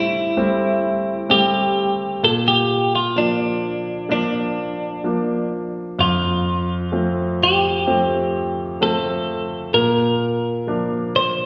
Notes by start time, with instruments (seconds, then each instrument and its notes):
Already playing: grand piano A2 G3 A3 C4, clean electric guitar E4
0.37 grand piano G3 A3 C4
1.29 grand piano G3 A3 C4, clean electric guitar G4
2.23 grand piano A#2, clean electric guitar A4
2.48 clean electric guitar G4
2.95 clean electric guitar F4
3.16 grand piano F3 A#3 D4, clean electric guitar D4
4.09 grand piano F3 A#3 D4, clean electric guitar D4
5.04 grand piano F3 A#3 D4
5.99 grand piano F2, clean electric guitar F4
6.92 grand piano F3 A3 C4
7.43 clean electric guitar G4
7.87 grand piano F3 A3 C4
8.81 grand piano F3 A3 C4, clean electric guitar A4
9.74 grand piano A#2, clean electric guitar A#4
10.67 grand piano F3 A#3 D4
11.16 clean electric guitar C5